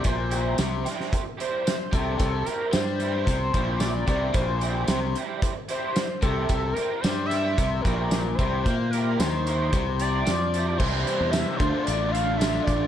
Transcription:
<<
  \new Staff \with { instrumentName = "Analog synth lead" } { \time 4/4 \key c \mixolydian \tempo 4 = 112 c''4. r4 c''4 a'8 | a'8 bes'8 c''4 c''4 d''4 | c''4. r4 c''4 a'8 | a'8 bes'8 c''8 e''4 bes'4 c''8 |
c''8 bes'8 c''4. d''4. | c''4 e''8 c''8 d''8 f''8 e''8 d''8 | }
  \new Staff \with { instrumentName = "Overdriven electric guitar" } { \time 4/4 \key c \mixolydian <g c' e' g'>8 <g c' e' g'>8 r8 <g c' e' g'>8 r8 <g c' e' g'>8 r8 <g c' e' g'>8 | r8 <g c' e' g'>8 r8 <g c' e' g'>8 r8 <g c' e' g'>8 r8 <g c' e' g'>8 | r8 <g c' e' g'>8 r8 <g c' e' g'>8 r8 <g c' e' g'>8 r8 <g c' e' g'>8 | r8 <g c' e' g'>8 r8 <g c' e' g'>8 r8 <g c' e' g'>8 r8 <g c' e' g'>8 |
r8 <g c' e' g'>8 r8 <g c' e' g'>8 r8 <g c' e' g'>8 r8 <g c' e' g'>8 | <c e g c' e'>4. <d a d' f'>4. <d a d' f'>4 | }
  \new Staff \with { instrumentName = "Overdriven electric guitar" } { \clef bass \time 4/4 \key c \mixolydian bes,4 c8 r2 c8 | c8 r8 g4 c8 bes,4 c8 | bes,4 c8 r2 c8 | c8 r8 g4 c8 bes,4 c8 |
bes4 ees4 c4 f4 | <c e g c' e'>4. <d a d' f'>4. <d a d' f'>4 | }
  \new Staff \with { instrumentName = "Fingered electric bass" } { \clef bass \time 4/4 \key c \mixolydian bes,,4 c,8 r2 c,8 | c,8 r8 g,4 c,8 bes,,4 c,8 | bes,,4 c,8 r2 c,8 | c,8 r8 g,4 c,8 bes,,4 c,8 |
bes,4 ees,4 c,4 f,4 | c,8 r16 e,8 r16 d,16 r16 a,,4. a,,8 | }
  \new DrumStaff \with { instrumentName = "Drums" } \drummode { \time 4/4 <hh bd>8 hh8 <hh sn tamb>8 <hh sn>16 sn16 <hh bd>8 hh8 <hh sn tamb>8 <hh bd>8 | <hh bd>8 hh8 <hh sn tamb>8 hh8 <hh bd>8 <hh bd>8 <hh sn tamb>8 <hh bd>8 | <hh bd>8 hh8 <hh sn tamb>8 hh8 <hh bd>8 hh8 <hh sn tamb>8 <hh bd>8 | <hh bd>8 hh8 <hh sn tamb>8 <hh sn>8 <hh bd>8 <hh bd>8 <hh sn tamb>8 <hh bd>8 |
<hh bd>8 hh8 <hh sn tamb>8 hh8 <hh bd>8 hh8 <hh sn tamb>8 hh8 | <cymc bd>8 hh8 <hh sn tamb>8 <hh bd>8 hh8 hh8 <hh sn tamb>8 <hh bd>8 | }
>>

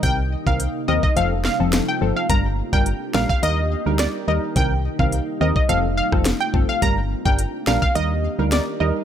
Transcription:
<<
  \new Staff \with { instrumentName = "Synth pluck" } { \time 4/4 \key g \minor \tempo 4 = 106 g''16 r8 f''16 r8 ees''16 ees''16 f''16 r16 f''16 r8 g''16 r16 f''16 | bes''16 r8 g''16 r8 f''16 f''16 ees''8. r16 d''16 r16 ees''16 r16 | g''16 r8 f''16 r8 ees''16 ees''16 f''16 r16 f''16 r8 g''16 r16 f''16 | bes''16 r8 g''16 r8 f''16 f''16 ees''8. r16 d''16 r16 ees''16 r16 | }
  \new Staff \with { instrumentName = "Ambient pad" } { \time 4/4 \key g \minor << { r1 | g'1 | r1 | g'1 | } \\ { ees'2 r2 | r1 | r1 | r2 ees'2 | } >> }
  \new Staff \with { instrumentName = "Synth stab" } { \time 4/4 \key g \minor <ees c' bes'>16 r8 <ees c' bes'>16 r8 <ees c' bes'>16 r16 <f c' a'>16 r8 <f c' a'>8. <f c' a'>8 | <g d' bes'>16 r8 <g d' bes'>16 r8 <g d' bes'>16 r16 <g ees' bes'>16 r8 <g ees' bes'>8. <g ees' bes'>8 | <ees c' bes'>16 r8 <ees c' bes'>16 r8 <ees c' bes'>16 r16 <f c' a'>16 r8 <f c' a'>16 r8 <f c' a'>16 r16 | <g d' bes'>16 r8 <g d' bes'>16 r8 <g d' bes'>16 r16 <g ees' bes'>16 r8 <g ees' bes'>8. <g ees' bes'>8 | }
  \new Staff \with { instrumentName = "FM bass" } { \clef bass \time 4/4 \key g \minor c,8. c,8 r16 ees,16 r16 f,,8. f,,8 r16 g,,16 r16 | g,,8. g,,8 r16 bes,,16 r16 ees,8. d,8 r16 ees,16 r16 | c,8. c,8 r16 ees,16 r16 f,,8. f,,8 r16 g,,16 r16 | g,,8. g,,8 r16 bes,,16 r16 ees,8. d,8 r16 ees,16 r16 | }
  \new DrumStaff \with { instrumentName = "Drums" } \drummode { \time 4/4 <hh bd>8. bd16 hh8. bd16 hh8 sn8 <hh sn>4 | <hh bd>8. bd16 hh8 sn16 bd16 hh4 <hh sn>4 | <hh bd>8. bd16 hh8. bd16 hh8. <bd ss>16 <hh sn>8 bd8 | <hh bd>8. bd16 hh8 sn16 bd16 hh4 <hh sn>4 | }
>>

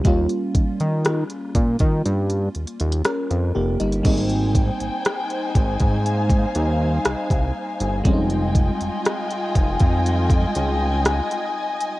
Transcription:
<<
  \new Staff \with { instrumentName = "String section" } { \time 4/4 \key aes \major \tempo 4 = 60 << { r1 | <ees' c'' aes''>1 | <f' ees'' aes''>1 | } \\ { r1 | g''2 f''2 | g''1 | } >> }
  \new Staff \with { instrumentName = "FM electric piano" } { \time 4/4 \key aes \major << { r2. <des' bes'>8 <bes g'>16 <g ees'>16~ | <g ees'>16 r2. r8. | r1 | } \\ { <g bes des' f'>2. r4 | <g bes c' ees'>1 | <g aes c' des' ees'>1 | } >> }
  \new Staff \with { instrumentName = "Analog synth bass" } { \clef bass \time 4/4 \key aes \major ees,16 r16 ees16 ees8 r16 bes,16 ees16 g,8 ees,16 ees,16 r16 f,16 f,,16 g,,16 | aes,,8. aes,,16 r8 aes,,16 aes,8. ees,8 c,16 c,16 r16 g,,16 | f,,8. f,,16 r8 f,,16 f,8. des,8. r8. | }
  \new DrumStaff \with { instrumentName = "Drums" } \drummode { \time 4/4 <hh bd>16 hh16 <hh bd>16 hh16 <hh ss>16 hh16 <hh bd>16 <hh bd>16 hh16 hh16 hh32 hh32 hh32 hh32 <hh ss>16 hh8 hh32 hh32 | <cymc hh bd>32 hh32 hh16 <hh bd>16 hh16 <hh ss>16 hh16 <hh bd>16 <hh bd>16 hh16 <hh bd>16 hh8 <hh ss>16 <hh bd>8 hh16 | <hh bd>16 hh16 <hh bd>16 hh16 <hh ss>16 hh16 <hh bd>16 <hh bd>16 hh16 <hh bd>16 hh8 <hh ss>16 hh8 hh16 | }
>>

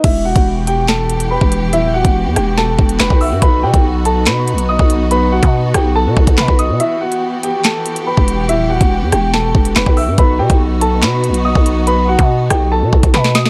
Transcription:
<<
  \new Staff \with { instrumentName = "Grand piano" } { \time 4/4 \key e \minor \tempo 4 = 142 <e' e''>8 <fis' fis''>8 r8 <g' g''>8 <a' a''>4 <b' b''>4 | <e' e''>8 <fis' fis''>8 r8 <g' g''>8 <a' a''>4 <b' b''>8 <e'' e'''>8 | <b' b''>8 <g' g''>8 r8 <a' a''>8 <b' b''>4 <dis'' dis'''>4 | <b' b''>8 <fis' fis''>8 r8 <g' g''>8 <a' a''>4 <b' b''>8 <dis'' dis'''>8 |
<e' e''>8 <fis' fis''>8 r8 <g' g''>8 <a' a''>4 <b' b''>4 | <e' e''>8 <fis' fis''>8 r8 <g' g''>8 <a' a''>4 <b' b''>8 <e'' e'''>8 | <b' b''>8 <g' g''>8 r8 <a' a''>8 <b' b''>4 <dis'' dis'''>4 | <b' b''>8 <fis' fis''>8 r8 <g' g''>8 <a' a''>4 <b' b''>8 <dis'' dis'''>8 | }
  \new Staff \with { instrumentName = "String section" } { \time 4/4 \key e \minor << { <e fis' g'>1~ | <e fis' g'>1 | dis'1~ | dis'1 |
<e g'>1~ | <e g'>1 | <dis' fis'>1~ | <dis' fis'>1 | } \\ { b1~ | b1~ | b1~ | b1~ |
b1~ | b1 | b1~ | b1 | } >> }
  \new Staff \with { instrumentName = "808-style bass" } { \clef bass \time 4/4 \key e \minor e,,8. e,,2~ e,,8 e,,8. | dis,,8. e,,8 e,16 e,,4 e,,8 e,,16 b,,8 g,16 | b,,8 b,16 b,,4~ b,,16 b,8~ b,32 b,,8~ b,,32 b,,8.~ | b,,8. b,8. b,,8. b,16 b,,16 b,,16 b,16 b,,8 b,16 |
r2. r16 e,,8. | dis,,8. e,,8 e,16 e,,4 e,,8 e,,16 b,,8 g,16 | b,,8 b,16 b,,4~ b,,16 b,8~ b,32 b,,8~ b,,32 b,,8.~ | b,,8. b,8. b,,8. b,16 b,,16 b,,16 b,4 | }
  \new DrumStaff \with { instrumentName = "Drums" } \drummode { \time 4/4 <cymc hh bd>8. <hh bd>16 r8 hh8 <hc hh sn>8 hh16 hh16 r16 bd16 hh8 | hh8. <hh bd>16 r8 <hh ss>8 sn8 bd16 hh16 <hc hh sn>16 bd16 hho8 | <hh bd>8. <hh bd>16 r8 hh8 <hc hh sn>8 hh16 hh16 r16 bd16 hh8 | hh8. <hh bd>16 r8 <hh ss>8 r8 bd16 <hh bd>16 <hc hh sn>16 bd16 hh8 |
hh8. hh16 r8 hh8 <hc hh sn>8 hh16 hh16 r16 bd16 hh8 | hh8. <hh bd>16 r8 <hh ss>8 sn8 bd16 hh16 <hc hh sn>16 bd16 hho8 | <hh bd>8. <hh bd>16 r8 hh8 <hc hh sn>8 hh16 hh16 r16 bd16 hh8 | hh8. <hh bd>16 r8 <hh ss>8 r8 bd16 <hh bd>16 <hh sn>16 sn16 <hh sn>16 sn16 | }
>>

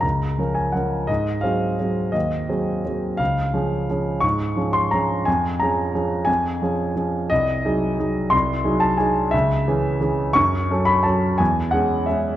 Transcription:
\new Staff \with { instrumentName = "Grand piano" } { \time 3/4 \key des \major \tempo 4 = 174 << { bes''4. aes''8 ges''4 | ees''4 f''2 | ees''2. | f''2. |
des'''4. c'''8 bes''4 | aes''4 bes''2 | aes''2. | \key cis \minor dis''2. |
bis''4. a''8 gis''4 | e''2. | cis'''4. b''8 a''4 | gis''4 fis''4 e''4 | } \\ { des,4 <f des' bes'>4 <f des' bes'>4 | aes,4 <ges c' aes'>4 <ges c' aes'>4 | ees,4 <ges c' aes'>4 <ges c' aes'>4 | des,4 <f des' aes'>4 <f des' aes'>4 |
aes,4 <f des' aes'>4 <f des' aes'>4 | f,4 <f des' aes'>4 <f des' aes'>4 | f,4 <f des' aes'>4 <f des' aes'>4 | bis,,4 <fis dis' gis'>4 <fis dis' gis'>4 |
bis,,4 <fis dis' gis'>4 <fis dis' gis'>4 | cis,4 <e cis' gis'>4 <e cis' gis'>4 | fis,4 <fis cis' a'>4 <fis cis' a'>4 | e,4 <gis cis' gis'>4 <gis cis' gis'>4 | } >> }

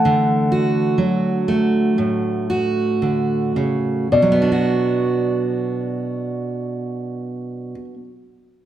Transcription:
<<
  \new Staff \with { instrumentName = "Grand piano" } { \time 4/4 \key b \minor \tempo 4 = 52 <a' fis''>2. r4 | d''1 | }
  \new Staff \with { instrumentName = "Steel-string acoustic guitar" } { \clef bass \time 4/4 \key b \minor << { r8 fis'4 a4 fis'4. | <fis b d' fis'>1 | } \\ { <d e a>4 fis4 a,4 d8 cis8 | b,1 | } >> }
>>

